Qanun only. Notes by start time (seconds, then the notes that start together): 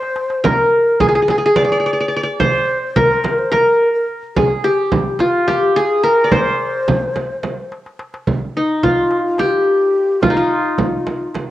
Already playing: C5 D5
0.44 A#4
1.00 G#4
1.08 G#4
1.15 G#4
1.22 G#4
1.30 G#4
1.38 G#4
1.46 G#4
1.56 D5
1.65 D5
1.72 D5
1.80 D5
1.86 D5
1.93 D5
2.01 D5
2.08 D5
2.17 D5
2.23 D5
2.40 C5
2.96 A#4
3.52 A#4
4.37 G#4
4.64 G4
5.20 F4
5.48 G4
5.76 G#4
6.04 A#4
6.24 D5
6.32 C5
8.57 D#4
8.83 F4
9.39 G4
10.23 F4
10.30 D#4
10.37 F4